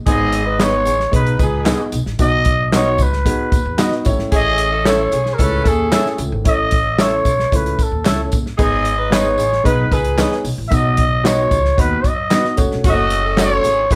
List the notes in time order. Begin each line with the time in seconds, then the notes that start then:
0.06 G#1 G#2 B3 D#4 G#4 D#5, kick, closed hi-hat, tambourine
0.32 closed hi-hat, tambourine
0.46 D#4 G#4 B4
0.59 B3 D#4 G#4 B4 C#5 D#5, snare, clap, closed hi-hat, tambourine
0.85 A1 B3 D#4 G#4, closed hi-hat, tambourine
1.00 snare
1.11 B1 B3 D#4 G#4 B4 D#5, kick, closed hi-hat
1.27 closed hi-hat
1.39 C#2 D#4 G#4 B4, kick, closed hi-hat, tambourine
1.64 B3 D#4 G#4 B4 D#5, snare, clap, closed hi-hat, tambourine
1.92 B1, closed hi-hat, tambourine
2.06 A1, snare
2.19 B1 B2 B3 D#4 F#4 D#5, kick, closed hi-hat, tambourine
2.45 kick, closed hi-hat
2.72 B3 D#4 F#4 B4 C#5 D#5, snare, clap, closed hi-hat, tambourine
2.98 C#2, kick, closed hi-hat, tambourine
3.02 B4
3.13 snare
3.25 B3 D#4 F#4 G#4, kick, closed hi-hat, tambourine
3.52 D#2, kick, closed hi-hat, tambourine
3.65 E2
3.78 B3 D#4 F#4 B4 D#5, snare, clap, closed hi-hat, tambourine
3.92 snare
4.05 A1 A2 A3 C#4 E4 C#5, kick, closed hi-hat, tambourine
4.19 G#1, snare
4.32 A1 C#4 E4 G#4 D#5, kick, closed hi-hat, tambourine
4.58 closed hi-hat, tambourine
4.72 C#4 E4 A4
4.85 A3 C#4 E4 A4 C#5 E5, snare, clap, closed hi-hat, tambourine
5.12 B1 C#4 E4 G#4, closed hi-hat, tambourine
5.26 snare
5.34 A#4
5.38 C#2 A3 C#4 E4 A4 B4 C#5, kick, closed hi-hat, tambourine
5.64 D#2 C#4 E4 G#4 A4, kick, closed hi-hat, tambourine
5.92 A3 C#4 E4 A4 C#5 E5, snare, clap, closed hi-hat, tambourine
6.06 snare
6.18 C#2 A2, closed hi-hat, tambourine
6.32 G#1
6.44 A1 A3 C#4 E4 C#5 D#5, kick, closed hi-hat, tambourine
6.71 kick, closed hi-hat, tambourine
6.98 A3 C#4 E4 A4 C#5 E5, snare, clap, closed hi-hat, tambourine
7.25 B1, kick, closed hi-hat, tambourine
7.39 snare
7.52 C#2 A3 C#4 E4 B4 C#5, kick, closed hi-hat, tambourine
7.66 closed hi-hat
7.79 kick, closed hi-hat, tambourine
7.83 A4
7.91 D#2
8.04 C#2 A3 C#4 E4 A4 C#5 E5, snare, clap, closed hi-hat, tambourine
8.32 F#1, kick, closed hi-hat, tambourine
8.46 snare
8.58 G#1 G#2 B3 D#4 G#4 D#5, kick, closed hi-hat, tambourine
8.85 closed hi-hat, tambourine
8.98 D#4 G#4 B4
9.10 B3 D#4 G#4 B4 C#5 D#5, snare, clap, closed hi-hat, tambourine
9.38 A1 B3 D#4 G#4, closed hi-hat, tambourine
9.53 snare
9.64 B1 B3 D#4 G#4 B4 D#5, kick, closed hi-hat
9.92 C#2 D#4 G#4 B4, kick, closed hi-hat, tambourine
10.05 closed hi-hat
10.17 B3 D#4 G#4 B4 C#5 D#5, snare, clap, closed hi-hat, tambourine
10.32 snare
10.44 B1, open hi-hat, tambourine
10.58 A1
10.68 B1 B2 B3 D#4 F#4 D#5 E5, kick, closed hi-hat, tambourine
10.74 D#5
10.97 kick, closed hi-hat
11.24 B3 D#4 F#4 B4 C#5 D#5, snare, clap, closed hi-hat, tambourine
11.51 C#2, kick, closed hi-hat, tambourine
11.65 snare
11.77 D#2 B3 D#4 F#4 B4 D#5, kick, closed hi-hat
12.04 F#2 D#5, kick, closed hi-hat, tambourine
12.30 B3 D#4 F#4 B4 D#5, snare, clap, closed hi-hat, tambourine
12.45 snare
12.57 F#1 A3 C#4 F#4 C#5, kick, closed hi-hat, tambourine
12.71 E1, snare
12.84 F#1 A3 C#4 F#4, kick, closed hi-hat, tambourine
12.89 D#5
13.10 closed hi-hat, tambourine
13.25 C#4 F#4 A4
13.36 A3 C#4 F#4 A4 C#5, snare, clap, closed hi-hat, tambourine
13.64 G#1 C#4 E4 G#4, closed hi-hat, tambourine
13.90 A1 A3 C#4 E4 F#4 G#4 B4 C#5, kick, closed hi-hat, tambourine